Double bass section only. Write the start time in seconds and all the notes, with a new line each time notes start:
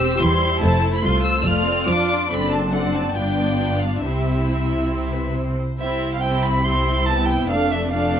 Already playing: E1
0.20 E2
0.62 F1
1.03 C2
1.45 F1
1.88 F2
2.30 F#1
3.15 G1
4.03 C2
5.80 C2
7.51 F1